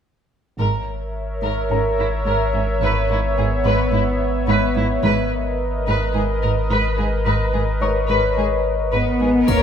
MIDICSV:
0, 0, Header, 1, 10, 480
1, 0, Start_track
1, 0, Key_signature, 5, "minor"
1, 0, Tempo, 1111111
1, 257, Time_signature, 4, 2, 24, 8
1, 4159, End_track
2, 0, Start_track
2, 0, Title_t, "Grand piano"
2, 0, Program_c, 0, 0
2, 339, Control_c, 0, 64, 127
2, 740, Note_on_c, 0, 70, 17
2, 740, Note_on_c, 0, 82, 23
2, 1225, Control_c, 0, 64, 0
2, 1299, Control_c, 0, 64, 127
2, 2161, Note_off_c, 0, 70, 0
2, 2161, Note_off_c, 0, 82, 0
2, 2184, Control_c, 0, 64, 0
2, 2265, Control_c, 0, 64, 127
2, 3375, Note_on_c, 0, 73, 20
2, 3378, Note_on_c, 0, 85, 27
2, 4079, Note_off_c, 0, 73, 0
2, 4080, Note_off_c, 0, 85, 0
2, 4103, Control_c, 0, 64, 0
2, 4159, End_track
3, 0, Start_track
3, 0, Title_t, "Violin section"
3, 0, Program_c, 1, 48
3, 4100, Note_on_c, 1, 70, 21
3, 4100, Note_on_c, 1, 73, 22
3, 4159, Note_off_c, 1, 70, 0
3, 4159, Note_off_c, 1, 73, 0
3, 4159, End_track
4, 0, Start_track
4, 0, Title_t, "Ambient pad"
4, 0, Program_c, 2, 92
4, 258, Note_on_c, 2, 70, 40
4, 259, Note_on_c, 2, 73, 39
4, 261, Note_on_c, 2, 76, 39
4, 1200, Note_off_c, 2, 70, 0
4, 1219, Note_on_c, 2, 59, 46
4, 2161, Note_off_c, 2, 73, 0
4, 2161, Note_off_c, 2, 76, 0
4, 2178, Note_off_c, 2, 59, 0
4, 2178, Note_on_c, 2, 70, 44
4, 2179, Note_on_c, 2, 75, 45
4, 2181, Note_on_c, 2, 71, 42
4, 4096, Note_off_c, 2, 70, 0
4, 4098, Note_off_c, 2, 75, 0
4, 4099, Note_off_c, 2, 71, 0
4, 4099, Note_on_c, 2, 73, 39
4, 4101, Note_on_c, 2, 70, 38
4, 4159, Note_off_c, 2, 70, 0
4, 4159, Note_off_c, 2, 73, 0
4, 4159, End_track
5, 0, Start_track
5, 0, Title_t, "Violin section"
5, 0, Program_c, 3, 48
5, 256, Note_on_c, 3, 70, 25
5, 368, Note_off_c, 3, 70, 0
5, 615, Note_on_c, 3, 70, 27
5, 727, Note_off_c, 3, 70, 0
5, 735, Note_on_c, 3, 61, 20
5, 769, Note_off_c, 3, 61, 0
5, 860, Note_on_c, 3, 64, 22
5, 895, Note_off_c, 3, 64, 0
5, 981, Note_on_c, 3, 70, 25
5, 1091, Note_off_c, 3, 70, 0
5, 1099, Note_on_c, 3, 61, 20
5, 1134, Note_off_c, 3, 61, 0
5, 1222, Note_on_c, 3, 71, 35
5, 1331, Note_off_c, 3, 71, 0
5, 1340, Note_on_c, 3, 64, 25
5, 1375, Note_off_c, 3, 64, 0
5, 1460, Note_on_c, 3, 68, 27
5, 1495, Note_off_c, 3, 68, 0
5, 1584, Note_on_c, 3, 71, 36
5, 1692, Note_off_c, 3, 71, 0
5, 1702, Note_on_c, 3, 64, 25
5, 1737, Note_off_c, 3, 64, 0
5, 1936, Note_on_c, 3, 71, 33
5, 2048, Note_off_c, 3, 71, 0
5, 2058, Note_on_c, 3, 64, 29
5, 2093, Note_off_c, 3, 64, 0
5, 2176, Note_on_c, 3, 71, 35
5, 2288, Note_off_c, 3, 71, 0
5, 2537, Note_on_c, 3, 71, 39
5, 2648, Note_off_c, 3, 71, 0
5, 2653, Note_on_c, 3, 68, 26
5, 2688, Note_off_c, 3, 68, 0
5, 2777, Note_on_c, 3, 70, 32
5, 2811, Note_off_c, 3, 70, 0
5, 2898, Note_on_c, 3, 71, 37
5, 3009, Note_off_c, 3, 71, 0
5, 3015, Note_on_c, 3, 68, 25
5, 3050, Note_off_c, 3, 68, 0
5, 3137, Note_on_c, 3, 71, 34
5, 3248, Note_off_c, 3, 71, 0
5, 3254, Note_on_c, 3, 68, 24
5, 3289, Note_off_c, 3, 68, 0
5, 3377, Note_on_c, 3, 70, 29
5, 3412, Note_off_c, 3, 70, 0
5, 3493, Note_on_c, 3, 71, 37
5, 3607, Note_off_c, 3, 71, 0
5, 3618, Note_on_c, 3, 68, 28
5, 3653, Note_off_c, 3, 68, 0
5, 3860, Note_on_c, 3, 71, 21
5, 3970, Note_off_c, 3, 71, 0
5, 3979, Note_on_c, 3, 68, 21
5, 4014, Note_off_c, 3, 68, 0
5, 4102, Note_on_c, 3, 76, 22
5, 4159, Note_off_c, 3, 76, 0
5, 4159, End_track
6, 0, Start_track
6, 0, Title_t, "Cello section"
6, 0, Program_c, 4, 48
6, 256, Note_on_c, 4, 44, 26
6, 291, Note_off_c, 4, 44, 0
6, 612, Note_on_c, 4, 44, 28
6, 647, Note_off_c, 4, 44, 0
6, 735, Note_on_c, 4, 44, 19
6, 770, Note_off_c, 4, 44, 0
6, 858, Note_on_c, 4, 44, 19
6, 892, Note_off_c, 4, 44, 0
6, 974, Note_on_c, 4, 44, 27
6, 1009, Note_off_c, 4, 44, 0
6, 1095, Note_on_c, 4, 44, 20
6, 1129, Note_off_c, 4, 44, 0
6, 1218, Note_on_c, 4, 44, 33
6, 1253, Note_off_c, 4, 44, 0
6, 1339, Note_on_c, 4, 44, 24
6, 1374, Note_off_c, 4, 44, 0
6, 1458, Note_on_c, 4, 44, 24
6, 1493, Note_off_c, 4, 44, 0
6, 1575, Note_on_c, 4, 44, 39
6, 1610, Note_off_c, 4, 44, 0
6, 1693, Note_on_c, 4, 44, 26
6, 1728, Note_off_c, 4, 44, 0
6, 1934, Note_on_c, 4, 44, 39
6, 1969, Note_off_c, 4, 44, 0
6, 2055, Note_on_c, 4, 44, 28
6, 2089, Note_off_c, 4, 44, 0
6, 2173, Note_on_c, 4, 44, 42
6, 2208, Note_off_c, 4, 44, 0
6, 2536, Note_on_c, 4, 44, 41
6, 2570, Note_off_c, 4, 44, 0
6, 2653, Note_on_c, 4, 44, 28
6, 2688, Note_off_c, 4, 44, 0
6, 2777, Note_on_c, 4, 44, 27
6, 2812, Note_off_c, 4, 44, 0
6, 2895, Note_on_c, 4, 44, 35
6, 2930, Note_off_c, 4, 44, 0
6, 3016, Note_on_c, 4, 44, 26
6, 3051, Note_off_c, 4, 44, 0
6, 3135, Note_on_c, 4, 44, 39
6, 3169, Note_off_c, 4, 44, 0
6, 3254, Note_on_c, 4, 44, 26
6, 3289, Note_off_c, 4, 44, 0
6, 3374, Note_on_c, 4, 44, 24
6, 3409, Note_off_c, 4, 44, 0
6, 3494, Note_on_c, 4, 44, 35
6, 3529, Note_off_c, 4, 44, 0
6, 3617, Note_on_c, 4, 44, 23
6, 3652, Note_off_c, 4, 44, 0
6, 3856, Note_on_c, 4, 44, 25
6, 3857, Note_on_c, 4, 59, 29
6, 3891, Note_off_c, 4, 44, 0
6, 3976, Note_on_c, 4, 44, 18
6, 4010, Note_off_c, 4, 44, 0
6, 4080, Note_off_c, 4, 59, 0
6, 4094, Note_on_c, 4, 58, 34
6, 4159, Note_off_c, 4, 58, 0
6, 4159, End_track
7, 0, Start_track
7, 0, Title_t, "Double bass section"
7, 0, Program_c, 5, 48
7, 255, Note_on_c, 5, 32, 23
7, 367, Note_off_c, 5, 32, 0
7, 1217, Note_on_c, 5, 32, 35
7, 1329, Note_off_c, 5, 32, 0
7, 2176, Note_on_c, 5, 32, 36
7, 2288, Note_off_c, 5, 32, 0
7, 4098, Note_on_c, 5, 32, 24
7, 4159, Note_off_c, 5, 32, 0
7, 4159, End_track
8, 0, Start_track
8, 0, Title_t, "Sub bass"
8, 0, Program_c, 6, 38
8, 253, Note_on_c, 6, 32, 47
8, 2158, Note_off_c, 6, 32, 0
8, 2177, Note_on_c, 6, 32, 55
8, 4080, Note_off_c, 6, 32, 0
8, 4100, Note_on_c, 6, 32, 49
8, 4159, Note_off_c, 6, 32, 0
8, 4159, End_track
9, 0, Start_track
9, 0, Title_t, "Impact"
9, 0, Program_c, 7, 103
9, 4096, Note_on_c, 7, 60, 25
9, 4159, Note_off_c, 7, 60, 0
9, 4159, End_track
10, 0, Start_track
10, 0, Title_t, "Drums"
10, 4096, Note_on_c, 9, 81, 19
10, 4139, Note_off_c, 9, 81, 0
10, 4159, End_track
0, 0, End_of_file